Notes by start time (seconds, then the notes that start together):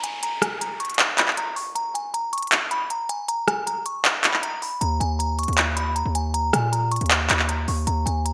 Already playing: downlifter
0.04 G#5, closed hi-hat
0.23 A#5, closed hi-hat
0.42 G#5, cross-stick, closed hi-hat
0.61 A#5, closed hi-hat
0.80 C#6, closed hi-hat
0.85 closed hi-hat
0.90 closed hi-hat
0.94 closed hi-hat
0.99 clap, closed hi-hat
1.18 B5, clap, closed hi-hat
1.28 clap
1.37 A#5, closed hi-hat
1.56 C#6, open hi-hat
1.75 A#5, closed hi-hat
1.94 G#5, closed hi-hat
2.14 A#5, closed hi-hat
2.33 C#6, closed hi-hat
2.38 closed hi-hat
2.42 closed hi-hat
2.47 closed hi-hat
2.52 clap, closed hi-hat
2.71 B5, closed hi-hat
2.90 A#5, closed hi-hat
3.09 G#5, closed hi-hat
3.28 A#5, closed hi-hat
3.48 G#5, cross-stick, closed hi-hat
3.67 A#5, closed hi-hat
3.86 C#6, closed hi-hat
4.05 clap, closed hi-hat
4.24 B5, clap, closed hi-hat
4.34 clap
4.43 A#5, closed hi-hat
4.62 B5, open hi-hat
4.81 D#2 A#5, closed hi-hat
5.00 D#2 G#5, closed hi-hat
5.19 A#5, closed hi-hat
5.39 C#6, closed hi-hat
5.43 closed hi-hat
5.48 D#2, closed hi-hat
5.53 closed hi-hat
5.58 clap, closed hi-hat
5.77 B5, closed hi-hat
5.96 A#5, closed hi-hat
6.05 D#2
6.15 G#5, closed hi-hat
6.34 A#5, closed hi-hat
6.53 A#2 G#5, cross-stick, closed hi-hat
6.72 A#5, closed hi-hat
6.92 C#6, closed hi-hat
6.96 closed hi-hat
7.01 D#2, closed hi-hat
7.06 closed hi-hat
7.11 clap, closed hi-hat
7.30 D#2 B5, clap, closed hi-hat
7.39 clap
7.49 A#5, closed hi-hat
7.68 D#2 C#6, open hi-hat
7.87 D#2 A#5, closed hi-hat
8.06 D#2 G#5, closed hi-hat
8.26 A#5, closed hi-hat